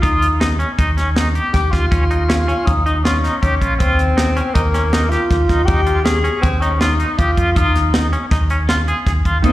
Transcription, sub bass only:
0.04 0.64 D#2 loud
0.79 1.40 D#2 medium
1.54 1.69 D#2 loud
1.73 1.88 D#2 medium
1.92 2.53 D#2 medium
2.68 3.28 D#2 medium
3.43 3.58 D#2 medium
3.62 3.82 A#1 medium
3.81 4.41 D#2 medium
4.56 5.16 D#2 loud
5.31 5.46 D#2 loud
5.49 5.65 D#2 medium
5.68 6.29 D#2 medium
6.44 7.04 D#2 medium
7.19 7.34 D#2 medium
7.38 7.58 F2 medium
7.56 8.17 D#2 medium
8.32 8.92 D#2 medium
9.06 9.22 D#2 loud
9.25 9.41 D#2 medium
9.44 9.52 D#2 medium

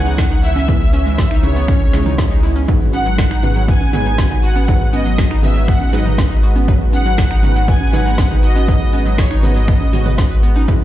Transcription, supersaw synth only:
0.00 0.45 F#5 loud
0.43 1.17 E5 loud
1.18 1.44 E5 medium
1.43 2.39 C#5 medium
2.94 3.64 F#5 loud
3.69 3.92 G#5 loud
3.94 4.45 G#5 loud
4.44 4.95 F#5 loud
4.94 5.45 D#5 loud
5.43 5.69 E5 medium
5.68 5.94 F#5 loud
5.93 6.40 D#5 medium
6.93 7.71 F#5 loud
7.68 7.94 G#5 loud
7.93 8.40 F#5 loud
8.43 9.20 D#5 loud
9.18 9.29 C#5 medium
9.43 10.39 D#5 medium

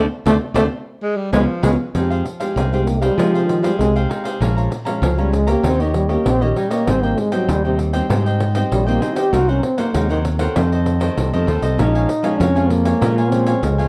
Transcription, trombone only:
0.27 0.34 A3 loud
0.56 0.64 A3 loud
1.33 1.41 G#3 medium
1.63 1.71 G#3 medium
2.72 2.87 C4 medium
2.86 3.02 A#3 medium
3.01 3.18 G3 medium
3.16 3.35 G#3 medium
3.33 3.48 C3 medium
3.47 3.62 D#3 medium
3.61 3.78 G3 medium
3.79 3.98 G#3 medium
5.03 5.21 F3 medium
5.19 5.35 G3 medium
5.34 5.51 G#3 medium
5.49 5.68 A#3 medium
5.66 5.83 C4 medium
5.82 5.97 D#3 medium
5.95 6.13 G3 medium
6.11 6.29 A#3 medium
6.27 6.45 C4 medium
6.43 6.58 D#3 medium
6.57 6.73 G3 medium
6.72 6.90 A#3 medium
6.88 7.06 C4 medium
7.04 7.20 A#3 medium
7.18 7.35 G#3 medium
7.34 7.52 F#3 medium
7.50 7.65 G3 medium
7.66 7.75 C3 medium
8.73 8.90 G3 medium
8.89 9.04 A#3 medium
9.03 9.18 D#4 medium
9.17 9.36 G4 loud
9.34 9.51 F#4 medium
9.49 9.65 C#4 medium
9.63 9.80 C4 medium
9.78 9.96 A#3 medium
9.95 10.10 G#3 medium
10.10 10.19 D#3 medium
11.79 12.42 D#4 medium
12.41 12.72 C#4 medium
12.70 13.32 A#3 medium
13.31 13.65 C4 medium
13.64 13.88 G#3 medium

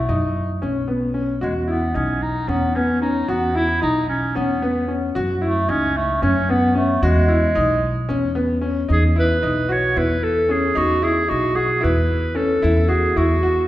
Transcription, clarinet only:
0.00 0.63 A3 medium
1.42 1.54 G#3 medium
1.68 1.97 B3 medium
1.96 2.24 C#4 medium
2.22 2.50 D#4 medium
2.48 2.77 B3 medium
2.76 3.01 C#4 medium
3.01 3.30 D#4 medium
3.29 3.57 B3 medium
3.56 3.82 E4 medium
3.82 4.07 D#4 medium
4.09 4.37 C#4 medium
4.36 4.96 B3 medium
5.43 5.71 A3 medium
5.70 5.99 C#4 medium
5.97 6.25 A3 medium
6.23 6.52 C#4 medium
6.50 6.75 B3 medium
6.76 7.04 A3 medium
7.03 8.09 G#3 medium
8.92 9.04 G#4 medium
9.19 9.74 B4 medium
9.72 9.99 C#5 medium
9.98 10.25 B4 medium
10.23 10.53 A4 medium
10.51 10.79 G#4 medium
10.77 11.05 F#4 medium
11.04 11.31 G#4 medium
11.29 11.57 F#4 medium
11.56 11.85 G#4 medium
11.84 12.38 B4 medium
12.36 12.91 A4 medium
12.89 13.18 G#4 medium
13.17 13.68 F#4 medium

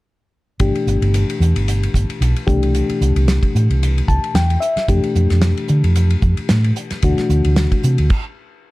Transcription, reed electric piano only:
0.60 2.44 B2 soft
0.60 2.44 E3 soft
0.60 2.44 A3 soft
0.60 2.44 D4 soft
0.60 2.44 G4 medium
2.47 4.58 B2 medium
2.47 4.57 E3 medium
2.47 4.58 A3 medium
2.47 4.58 D4 medium
2.47 4.57 G4 medium
4.08 4.33 A5 medium
4.35 4.60 G5 medium
4.60 4.86 E5 medium
4.88 6.99 B2 medium
4.88 6.99 E3 soft
4.88 6.99 A3 soft
4.88 6.99 D4 soft
4.88 6.99 G4 medium
7.04 8.09 B2 soft
7.04 8.09 E3 soft
7.04 8.09 A3 medium
7.04 8.09 D4 soft
7.04 8.09 F#4 medium

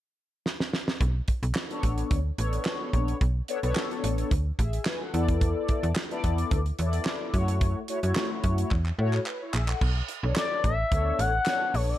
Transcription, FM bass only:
1.01 1.21 B1 loud
1.43 1.52 B1 loud
1.83 2.04 A1 medium
2.11 2.31 D2 medium
2.38 2.59 A1 medium
2.93 3.14 A#1 loud
3.21 3.42 B1 loud
3.63 3.73 B1 medium
4.04 4.24 A1 medium
4.31 4.52 D2 medium
4.59 4.79 A1 loud
5.14 5.55 E2 loud
5.83 5.93 E2 medium
6.24 6.44 E2 medium
6.51 6.72 D2 medium
6.79 6.99 E2 medium
7.34 7.75 F#2 loud
8.03 8.13 F#2 medium
8.44 8.64 F#2 medium
8.71 8.92 E2 loud
8.99 9.19 A2 loud
9.54 9.74 A#1 loud
9.81 10.02 B1 loud
10.23 10.33 B1 loud
10.64 10.85 A1 loud
10.92 11.12 D2 medium
11.19 11.40 A1 loud
11.74 11.95 A#1 loud

